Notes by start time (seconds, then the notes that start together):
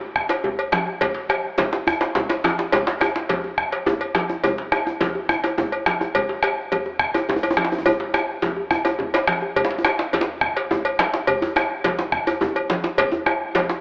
0.01 djembe slap, djembe tone
0.16 bombo rim, bombo low
0.29 cowbell, djembe slap
0.44 djembe tone, djembe bass, low conga
0.59 bombo rim, cowbell
0.72 bombo rim, djembe slap, high conga
0.87 djembe tone
1.01 bombo low, cowbell, high conga, djembe bass, low conga
1.15 djembe slap, high conga
1.29 bombo rim, cowbell, djembe tone
1.45 high conga
1.58 cowbell, djembe slap, high conga, djembe bass, low conga
1.72 djembe slap, djembe tone
1.87 bombo rim, bombo low, djembe slap, high conga, djembe bass
2.01 bombo rim, cowbell, djembe slap
2.15 bombo rim, djembe slap, djembe tone, low conga, djembe bass
2.29 bombo rim, cowbell, djembe slap
2.44 bombo rim, djembe slap, high conga, djembe bass
2.58 bombo rim, djembe slap, djembe tone
2.72 bombo low, cowbell, djembe slap, low conga, djembe bass
2.87 djembe slap
3.01 bombo rim, cowbell, djembe tone, djembe bass
3.16 djembe slap
3.29 cowbell, djembe slap, high conga, djembe bass, low conga
3.44 djembe slap, djembe tone
3.58 bombo rim, bombo low
3.72 cowbell, djembe slap
3.86 djembe tone, djembe bass, low conga
4.01 bombo rim, cowbell
4.15 bombo rim, djembe slap, djembe tone, high conga
4.30 djembe tone
4.43 bombo low, cowbell, djembe tone, djembe bass, low conga
4.58 djembe slap
4.72 bombo rim, cowbell, djembe tone
4.87 djembe tone
5.01 cowbell, djembe slap, djembe tone, high conga, djembe bass, low conga
5.15 djembe slap, djembe tone
5.29 bombo rim, bombo low, djembe tone
5.44 cowbell, djembe slap, djembe tone
5.58 djembe tone, djembe bass, low conga
5.72 bombo rim, cowbell
5.86 bombo rim, djembe slap, high conga, djembe tone
6.01 djembe tone
6.15 bombo low, cowbell, djembe bass, low conga
6.29 djembe slap
6.43 bombo rim, cowbell, djembe tone
6.72 cowbell, high conga, djembe bass, low conga
6.86 djembe slap, djembe tone
7.00 bombo rim, bombo low
7.14 cowbell, djembe slap, djembe tone
7.29 djembe slap, djembe tone, djembe bass, low conga
7.36 djembe tone
7.43 bombo rim, cowbell, djembe tone
7.51 djembe tone
7.57 bombo rim, djembe slap, high conga
7.64 djembe slap
7.71 djembe tone
7.78 djembe tone
7.86 bombo low, cowbell, djembe tone, djembe bass, low conga
8.00 bombo rim, djembe slap, high conga
8.14 bombo rim, cowbell, djembe tone, high conga
8.29 bombo rim
8.42 bombo rim, djembe slap, djembe tone, high conga, djembe bass, low conga
8.57 djembe tone
8.71 bombo rim, bombo low, djembe slap, djembe tone
8.85 cowbell, djembe slap, djembe tone
8.99 djembe slap, djembe tone, djembe bass, low conga
9.14 cowbell, djembe slap
9.28 bombo rim, djembe slap, high conga
9.42 djembe tone, high conga
9.56 bombo low, cowbell, djembe bass, low conga
9.65 djembe slap
9.70 djembe slap
9.78 djembe tone
9.85 bombo rim, cowbell, djembe slap, djembe tone
9.99 djembe slap
10.13 cowbell, djembe slap, djembe tone, high conga, low conga, djembe bass
10.21 djembe slap
10.28 djembe slap, djembe tone
10.41 bombo rim, bombo low
10.56 cowbell, djembe slap
10.71 djembe tone, djembe bass, low conga
10.85 bombo rim, cowbell
10.99 bombo rim, djembe slap, high conga
11.14 djembe slap, djembe tone
11.27 bombo low, cowbell, djembe bass, low conga
11.42 djembe slap, djembe bass
11.56 bombo rim, cowbell, djembe tone
11.84 cowbell, djembe slap, high conga, djembe bass, low conga
11.99 djembe slap, djembe tone
12.12 bombo rim, bombo low
12.27 cowbell, djembe slap, djembe bass
12.41 djembe tone, djembe bass, low conga
12.56 bombo rim, cowbell
12.70 djembe slap, high conga
12.83 djembe slap, djembe tone
12.98 bombo low, cowbell, djembe bass, low conga
13.12 djembe slap, djembe bass
13.26 bombo rim, cowbell, djembe tone
13.55 cowbell, djembe slap, high conga, djembe bass, low conga
13.69 djembe slap, djembe tone